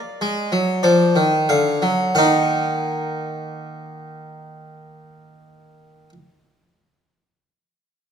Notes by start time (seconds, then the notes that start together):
Already playing: D5
0.21 G#3
0.52 F#3
0.83 F3 D5
1.16 D#3
1.49 D3 F5
1.82 F#3
2.15 D#3 A#3 D#4 F#5